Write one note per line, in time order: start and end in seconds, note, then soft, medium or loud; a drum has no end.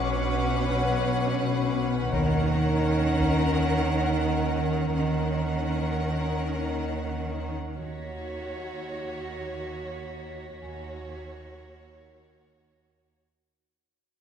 0.00 2.09 B1 medium
0.00 2.09 B2 medium
0.00 0.22 B2 soft
0.00 2.09 C#4 medium
0.00 2.09 B4 medium
0.00 2.09 F#5 medium
0.00 0.33 B5 medium
0.00 1.74 C#6 soft
0.00 1.75 C#6 soft
0.00 1.75 D6 soft
0.36 0.57 B2 medium
0.71 0.92 B2 soft
1.07 1.28 B2 soft
1.42 1.63 B2 medium
1.77 1.98 B2 soft
2.12 4.91 D#2 medium
2.12 4.91 D#3 medium
2.12 2.33 D#3 medium
2.12 4.91 C#4 medium
2.12 4.91 A#4 medium
2.12 4.92 F#5 medium
2.12 taiko soft
2.48 2.69 D#3 soft
3.18 3.40 D#3 soft
3.18 taiko soft
3.54 3.75 D#3 soft
3.89 4.10 D#3 soft
4.25 4.46 D#3 medium
4.61 4.82 D#3 soft
4.95 7.53 D#2 soft
4.95 5.16 D#3 soft
4.95 7.54 D#3 soft
4.95 7.54 C#4 soft
4.95 7.53 A#4 soft
4.95 7.54 F#5 soft
5.30 5.52 D#3 soft
5.66 5.87 D#3 soft
6.01 6.22 D#3 soft
6.37 6.58 D#3 soft
6.72 6.93 D#3 soft
7.07 7.28 D#3 soft
7.77 8.44 D#2 soft
7.77 10.56 D#2 soft
7.77 10.56 F#4 soft
7.77 10.56 C#5 soft
7.77 13.04 A#6 soft
7.77 12.33 B6 soft
8.51 10.57 F#5 soft
10.59 11.26 D#2 soft
10.59 13.18 D#2 soft
10.59 13.18 F#4 soft
10.59 13.18 C#5 soft
10.59 12.69 G#5 soft
12.00 13.38 A#4 soft
12.00 13.38 A#6 soft